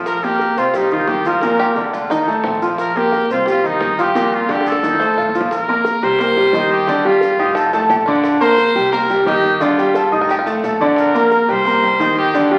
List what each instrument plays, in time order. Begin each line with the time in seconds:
Already playing: upright bass A#1, grand piano F3 F4
0.06 trumpet A#4, high bongo, maracas
0.23 grand piano A#3 A#4, trumpet G4, high bongo, maracas
0.39 high bongo, maracas
0.56 upright bass C2, grand piano C4 C5, trumpet F4, high bongo, maracas
0.74 grand piano G3 G4, trumpet D#4, high bongo, maracas
0.91 grand piano D#3 D#4, trumpet F4, maracas
1.07 upright bass G1, trumpet G4, high bongo, low bongo, maracas
1.24 grand piano F3 F4, trumpet A#4, high bongo, maracas
1.41 grand piano A#2 A#3, high bongo, maracas
1.59 five-string banjo G4, high bongo, maracas
1.76 grand piano D3 D4, high bongo, maracas
1.93 upright bass F1, five-string banjo F4, high bongo, maracas
2.10 grand piano D#3 D#4, five-string banjo D#4, high bongo, maracas
2.27 upright bass A1, grand piano A3 A4, high bongo, maracas
2.44 upright bass A#1, five-string banjo C4, high bongo, low bongo, maracas
2.62 grand piano F3 F4, maracas
2.78 trumpet A#4, high bongo, maracas
2.95 grand piano A#3 A#4, trumpet G4, high bongo, maracas
3.12 high bongo, maracas
3.29 upright bass C2, grand piano C4 C5, trumpet F4, high bongo, maracas
3.46 grand piano G3 G4, trumpet F4, high bongo, maracas
3.64 grand piano D#3 D#4, trumpet D#4, maracas
3.81 upright bass G1, high bongo, low bongo, maracas
3.98 grand piano F3 F4, trumpet G4, high bongo, maracas
4.15 grand piano A#2 A#3, high bongo, maracas
4.32 trumpet F4, high bongo, maracas
4.49 grand piano D3 D4, trumpet G4, high bongo, maracas
4.61 high bongo
4.66 upright bass F1, trumpet A4, maracas
4.72 high bongo
4.83 grand piano D#3 D#4, low bongo, maracas
4.94 low bongo
5.00 grand piano A3 A4, five-string banjo C5, maracas
5.17 upright bass A#1, five-string banjo F4, maracas
5.29 low bongo
5.35 grand piano F3 F4, maracas
5.41 low bongo
5.51 trumpet A#4, high bongo, maracas
5.68 grand piano A#3 A#4 A#5, high bongo
5.85 high bongo, maracas
6.02 upright bass C2, grand piano G3 G4 G5, trumpet C5, high bongo, maracas
6.19 grand piano A#3 A#4 A#5, high bongo, maracas
6.37 grand piano G3 G4 G5
6.53 upright bass G1, grand piano D#3 D#4 D#5, high bongo, low bongo, maracas
6.70 trumpet G4, high bongo, maracas
6.87 grand piano D3 D4 D5, high bongo, maracas
7.04 grand piano G3 G4 G5, trumpet F4, high bongo
7.21 high bongo, maracas
7.38 upright bass F1, grand piano D#4 D#5 D#6, five-string banjo G4, high bongo, maracas
7.55 five-string banjo A4, high bongo, maracas
7.73 grand piano A3 A4 A5, five-string banjo A4, maracas
7.89 upright bass A#1, five-string banjo G4, high bongo, low bongo, maracas
8.06 grand piano D3 D4 D5, five-string banjo F4, high bongo, maracas
8.24 high bongo, maracas
8.41 grand piano A#3 A#4 A#5, trumpet C5, high bongo, maracas
8.58 high bongo, maracas
8.75 upright bass C2, grand piano G3 G4 G5, maracas
8.92 grand piano A#3 A#4 A#5, trumpet A#4, high bongo, maracas
9.10 grand piano G3 G4 G5, maracas
9.26 upright bass G1, grand piano D#3 D#4 D#5, trumpet G4, high bongo, low bongo, maracas
9.43 high bongo, maracas
9.60 grand piano D3 D4 D5, trumpet F4, high bongo, maracas
9.77 grand piano G3 G4 G5, high bongo, maracas
9.94 five-string banjo A4, high bongo, maracas
10.12 upright bass F1, grand piano D#4 D#5 D#6, high bongo, maracas
10.21 five-string banjo A#4
10.29 five-string banjo G4, high bongo, maracas
10.39 five-string banjo F4
10.46 grand piano A3 A4 A5, maracas
10.63 upright bass A#1, five-string banjo A4, high bongo, low bongo, maracas
10.80 grand piano D3 D4 D5, high bongo, maracas
10.96 trumpet A#4, high bongo, maracas
11.14 grand piano A#3 A#4 A#5, high bongo, maracas
11.31 high bongo, maracas
11.48 upright bass C2, grand piano G3 G4 G5, trumpet C5, high bongo, maracas
11.65 grand piano A#3 A#4 A#5, high bongo, maracas
11.83 grand piano G3 G4 G5
11.99 upright bass G1, grand piano D#3 D#4 D#5, high bongo, low bongo, maracas
12.17 trumpet G4, high bongo, maracas
12.34 grand piano D3 D4 D5, high bongo, maracas
12.50 grand piano G3 G4 G5, trumpet F4, high bongo